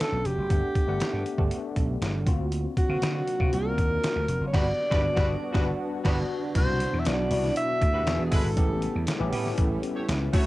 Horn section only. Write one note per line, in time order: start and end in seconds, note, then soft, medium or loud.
4.53 4.66 G3 medium
4.53 4.66 F#4 medium
4.53 4.66 B4 loud
4.90 5.04 G3 loud
4.90 5.03 F#4 loud
4.90 5.03 B4 loud
5.15 5.29 G3 medium
5.15 5.29 F#4 medium
5.15 5.29 B4 loud
5.53 5.67 G3 medium
5.53 5.66 F#4 loud
5.53 5.66 B4 loud
6.04 6.17 G3 loud
6.04 6.17 F#4 medium
6.04 6.17 B4 medium
7.93 8.04 G3 medium
7.93 8.04 F#4 medium
7.93 8.04 B4 medium
8.32 8.48 G#3 loud
8.32 8.48 E4 loud
8.32 8.48 B4 loud
9.95 10.06 A3 medium
9.95 10.06 G4 medium
9.95 10.06 C#5 medium
10.33 10.46 A3 loud
10.33 10.46 F#4 loud
10.33 10.46 C#5 loud